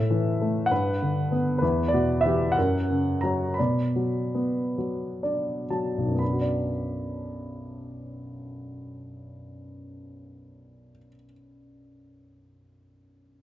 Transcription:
0.00 0.69 A2 soft
0.00 0.67 A4 soft
0.00 0.72 E5 medium
0.10 0.69 E3 soft
0.41 0.70 A3 soft
0.66 1.33 F#5 medium
0.71 1.60 G2 soft
0.71 1.36 B4 medium
1.02 1.61 D3 soft
1.32 1.62 B3 soft
1.58 2.54 E2 soft
1.58 1.92 B4 medium
1.64 1.92 E4 soft
1.88 2.20 D5 medium
1.94 2.55 B2 soft
1.94 2.23 F#4 soft
2.21 2.56 E5 medium
2.25 2.56 E3 soft
2.25 2.56 G4 soft
2.52 3.23 F#5 medium
2.56 3.56 F#2 soft
2.56 3.20 A#4 soft
2.90 3.57 C#3 soft
3.21 3.57 F#3 soft
3.21 3.59 A#5 medium
3.25 3.57 C#5 soft
3.54 5.65 B5 soft
3.59 6.18 B2 soft
3.59 5.22 D5 soft
3.96 4.77 F#3 soft
4.35 6.14 B3 soft
4.78 5.69 F#3 soft
5.23 6.19 D4 soft
5.23 5.68 D5 soft
5.70 6.20 F#3 soft
5.70 6.18 A5 soft
5.98 10.89 B1 soft
6.07 10.98 F#2 soft
6.15 11.07 B3 soft
6.15 11.10 B5 soft
6.24 11.15 D4 soft
6.33 11.24 F#4 soft
6.41 11.33 D5 soft

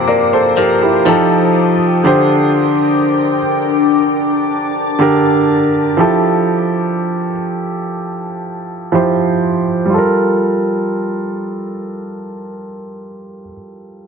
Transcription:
0.00 1.08 C3 medium
0.00 1.16 C3 medium
0.00 0.57 F3 medium
0.00 1.09 A#3 medium
0.00 1.08 D4 medium
0.00 1.17 D4 medium
0.00 0.58 G4 loud
0.00 1.02 C5 medium
0.00 1.02 A#5 medium
0.00 1.02 D6 medium
0.08 1.16 A#3 medium
0.08 0.32 A#4 medium
0.08 0.31 D5 medium
0.33 0.56 A4 medium
0.33 0.56 C5 medium
0.57 1.06 F3 medium
0.57 0.81 G4 medium
0.57 0.81 A#4 medium
0.82 1.29 E4 soft
0.82 1.06 G4 medium
1.05 1.71 F3 medium
1.05 2.64 F3 medium
1.05 1.72 D#4 medium
1.05 1.72 G4 medium
1.05 2.04 A4 medium
1.05 1.73 A4 loud
1.05 3.98 G5 medium
1.05 2.04 D#6 medium
2.04 3.36 D3 medium
2.04 3.36 D4 medium
2.04 5.94 D4 medium
2.04 3.37 G4 medium
2.04 5.94 A#4 medium
2.04 3.37 C5 loud
2.04 5.94 D6 medium
4.02 5.96 A5 medium
4.99 5.65 D3 medium
4.99 5.65 D4 medium
4.99 5.66 G4 medium
4.99 5.66 A#4 loud
5.97 7.29 F3 medium
5.97 7.30 E4 medium
5.97 7.30 G4 medium
5.97 7.31 A4 medium
8.92 9.58 F3 medium
8.92 9.59 E4 medium
8.92 9.59 G4 medium
8.92 9.60 C5 medium
9.85 13.39 G3 medium
9.90 13.43 F4 medium
9.94 13.47 A4 medium
9.98 13.51 A#4 medium

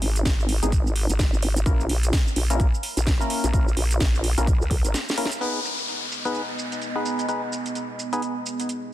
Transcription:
0.02 0.24 G#1 medium
0.02 open hi-hat loud
0.16 closed hi-hat medium
0.16 shaker medium
0.25 0.60 G#1 medium
0.25 kick loud
0.25 snare loud
0.25 closed hi-hat soft
0.25 shaker medium
0.40 shaker soft
0.49 open hi-hat loud
0.63 1.07 G#1 medium
0.63 0.72 G#3 medium
0.63 0.72 B3 medium
0.63 0.72 D#4 medium
0.63 0.72 G#4 medium
0.63 closed hi-hat medium
0.63 shaker medium
0.72 kick loud
0.72 closed hi-hat medium
0.72 shaker medium
0.87 shaker soft
0.96 open hi-hat loud
1.09 1.31 G#1 loud
1.09 closed hi-hat medium
1.09 shaker medium
1.19 kick loud
1.19 snare loud
1.19 closed hi-hat medium
1.19 shaker medium
1.33 1.65 G#1 medium
1.33 shaker soft
1.42 open hi-hat loud
1.56 closed hi-hat medium
1.56 shaker medium
1.66 1.88 A#1 medium
1.66 1.85 A#3 medium
1.66 1.85 C#4 medium
1.66 1.85 E4 medium
1.66 1.85 A#4 medium
1.66 kick loud
1.66 closed hi-hat medium
1.66 shaker medium
1.81 shaker soft
1.89 2.11 A#1 loud
1.89 open hi-hat loud
2.03 closed hi-hat medium
2.03 shaker medium
2.13 kick loud
2.13 snare loud
2.13 closed hi-hat medium
2.13 shaker medium
2.27 shaker soft
2.36 2.71 A#1 loud
2.36 open hi-hat loud
2.50 2.67 A#3 medium
2.50 2.67 C#4 medium
2.50 2.67 E4 medium
2.50 2.67 A#4 loud
2.50 closed hi-hat medium
2.50 shaker medium
2.60 kick loud
2.60 closed hi-hat medium
2.60 shaker medium
2.74 shaker soft
2.83 open hi-hat medium
2.97 3.18 A#1 loud
2.97 closed hi-hat medium
2.97 shaker medium
3.07 kick loud
3.07 snare loud
3.07 closed hi-hat medium
3.07 shaker medium
3.20 3.51 A#3 medium
3.20 3.51 C#4 medium
3.20 3.51 E4 medium
3.20 3.51 A#4 loud
3.20 shaker soft
3.30 open hi-hat loud
3.44 3.75 A#1 loud
3.44 closed hi-hat medium
3.44 shaker medium
3.53 3.66 A#3 medium
3.53 3.66 C#4 medium
3.53 3.66 E4 medium
3.53 3.66 A#4 medium
3.53 kick loud
3.53 closed hi-hat medium
3.53 shaker medium
3.68 shaker soft
3.77 3.99 A#1 medium
3.77 open hi-hat loud
3.91 closed hi-hat medium
3.91 shaker medium
4.00 4.36 A#1 loud
4.00 kick loud
4.00 snare loud
4.00 closed hi-hat medium
4.00 shaker medium
4.15 shaker soft
4.24 open hi-hat loud
4.38 4.59 A#1 loud
4.38 4.47 A#3 medium
4.38 4.47 C#4 medium
4.38 4.47 E4 medium
4.38 4.47 A#4 loud
4.38 closed hi-hat medium
4.38 shaker medium
4.47 kick loud
4.47 closed hi-hat medium
4.47 shaker medium
4.61 4.82 C#2 loud
4.61 shaker soft
4.71 kick medium
4.71 open hi-hat medium
4.85 4.94 G#1 medium
4.85 closed hi-hat medium
4.85 shaker medium
4.94 snare medium
4.94 closed hi-hat medium
4.94 shaker medium
5.09 snare medium
5.09 shaker soft
5.18 5.31 A#3 medium
5.18 5.31 C#4 medium
5.18 5.31 E4 medium
5.18 5.31 A#4 loud
5.18 open hi-hat loud
5.25 snare loud
5.32 closed hi-hat medium
5.32 shaker medium
5.41 8.94 B3 medium
5.41 5.60 B3 medium
5.41 5.60 D#4 medium
5.41 5.60 G#4 medium
5.41 8.94 G#4 medium
5.41 5.60 B4 medium
5.41 8.94 D#5 medium
5.41 closed hi-hat soft
5.41 crash medium
5.41 downlifter medium
5.41 shaker soft
5.65 shaker medium
5.78 closed hi-hat medium
5.78 shaker soft
5.88 closed hi-hat soft
5.88 shaker soft
6.12 shaker medium
6.25 6.42 B3 medium
6.25 6.42 D#4 medium
6.25 6.42 G#4 medium
6.25 6.42 B4 medium
6.25 closed hi-hat medium
6.25 shaker soft
6.35 closed hi-hat medium
6.35 shaker soft
6.59 shaker medium
6.72 closed hi-hat medium
6.72 shaker soft
6.82 closed hi-hat soft
6.82 shaker soft
6.95 7.26 B3 medium
6.95 7.26 D#4 medium
6.95 7.26 G#4 medium
6.95 7.26 B4 loud
7.06 shaker medium
7.19 closed hi-hat medium
7.19 shaker soft
7.28 7.41 B3 medium
7.28 7.41 D#4 medium
7.28 7.41 G#4 medium
7.28 7.41 B4 medium
7.28 closed hi-hat medium
7.28 shaker soft
7.53 shaker medium
7.66 closed hi-hat medium
7.66 shaker soft
7.75 closed hi-hat soft
7.75 shaker soft
7.99 shaker medium
8.13 8.22 B3 medium
8.13 8.22 D#4 medium
8.13 8.22 G#4 medium
8.13 8.22 B4 medium
8.13 closed hi-hat medium
8.13 shaker soft
8.22 closed hi-hat soft
8.22 shaker soft
8.46 shaker medium
8.60 closed hi-hat medium
8.60 shaker soft
8.69 closed hi-hat soft
8.69 shaker soft

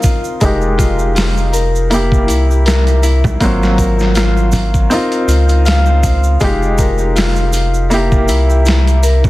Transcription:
0.00 0.34 C4 medium
0.00 0.35 D#4 medium
0.00 0.36 F4 medium
0.00 0.77 F4 medium
0.00 0.40 A#4 medium
0.00 kick medium
0.00 open hi-hat medium
0.00 shaker medium
0.24 shaker soft
0.40 2.30 F1 loud
0.40 1.84 G#3 medium
0.40 1.85 D#4 medium
0.40 1.52 A#4 medium
0.40 kick loud
0.40 open hi-hat medium
0.40 shaker soft
0.45 1.86 G4 medium
0.61 shaker soft
0.78 1.14 F4 medium
0.78 kick medium
0.78 open hi-hat medium
0.78 shaker medium
0.99 shaker soft
1.15 1.96 F4 medium
1.15 snare loud
1.15 open hi-hat medium
1.15 shaker medium
1.37 shaker soft
1.52 2.65 A#4 medium
1.52 open hi-hat medium
1.52 shaker medium
1.75 shaker soft
1.90 3.34 A#3 medium
1.90 2.28 E4 medium
1.90 3.35 E4 medium
1.90 3.36 G4 medium
1.90 open hi-hat medium
1.90 shaker medium
2.12 kick medium
2.12 shaker soft
2.28 3.38 C2 medium
2.28 3.03 E4 medium
2.28 open hi-hat medium
2.28 shaker medium
2.51 shaker soft
2.65 3.77 A#4 medium
2.65 snare loud
2.65 open hi-hat medium
2.65 shaker soft
2.87 closed hi-hat soft
2.87 shaker soft
3.03 3.46 E4 medium
3.03 open hi-hat medium
3.03 shaker medium
3.24 kick medium
3.24 low conga medium
3.24 shaker soft
3.40 4.88 G#1 medium
3.40 4.86 F#3 medium
3.40 4.84 A#3 medium
3.40 4.85 C4 medium
3.40 4.15 F4 medium
3.40 kick loud
3.40 open hi-hat medium
3.40 shaker medium
3.63 snare soft
3.63 shaker soft
3.78 4.90 A#4 medium
3.78 kick medium
3.78 open hi-hat medium
3.78 shaker medium
3.99 snare soft
3.99 shaker soft
4.15 4.52 F4 loud
4.15 snare loud
4.15 open hi-hat medium
4.15 shaker soft
4.37 shaker soft
4.52 5.27 F4 medium
4.52 open hi-hat medium
4.52 low conga medium
4.52 shaker medium
4.74 kick medium
4.74 shaker soft
4.90 6.34 C4 medium
4.90 6.35 D#4 medium
4.90 6.36 F4 medium
4.90 6.78 A#4 medium
4.90 open hi-hat medium
4.90 shaker soft
5.12 closed hi-hat soft
5.12 shaker soft
5.28 6.37 C#2 medium
5.28 6.40 F4 medium
5.28 open hi-hat medium
5.28 shaker medium
5.49 closed hi-hat soft
5.49 shaker soft
5.65 6.02 F5 loud
5.65 snare loud
5.65 open hi-hat medium
5.65 shaker soft
5.86 7.84 C5 medium
5.86 shaker soft
6.03 7.69 F5 medium
6.03 kick medium
6.03 open hi-hat medium
6.03 shaker medium
6.23 shaker soft
6.40 8.30 F1 loud
6.40 7.84 G#3 medium
6.40 7.85 D#4 medium
6.40 7.15 F4 medium
6.40 7.86 G4 medium
6.40 kick loud
6.40 open hi-hat medium
6.40 shaker soft
6.63 shaker soft
6.78 7.91 A#4 medium
6.78 kick medium
6.78 open hi-hat medium
6.78 shaker medium
6.98 shaker soft
7.15 7.53 F4 medium
7.15 snare loud
7.15 open hi-hat medium
7.15 shaker medium
7.36 shaker soft
7.53 8.34 F4 medium
7.53 open hi-hat medium
7.53 shaker medium
7.74 shaker soft
7.90 9.30 A#3 medium
7.90 9.30 E4 medium
7.90 9.30 G4 medium
7.90 9.02 A#4 medium
7.90 open hi-hat medium
7.90 shaker soft
8.12 kick medium
8.12 shaker soft
8.28 9.30 C2 medium
8.28 8.65 E4 loud
8.28 open hi-hat medium
8.28 shaker medium
8.50 shaker soft
8.65 9.30 E4 medium
8.65 snare loud
8.65 open hi-hat medium
8.65 shaker soft
8.87 closed hi-hat soft
8.87 shaker soft
9.03 9.30 A#4 medium
9.03 open hi-hat medium
9.03 shaker medium
9.24 kick medium
9.24 low conga medium
9.24 shaker soft

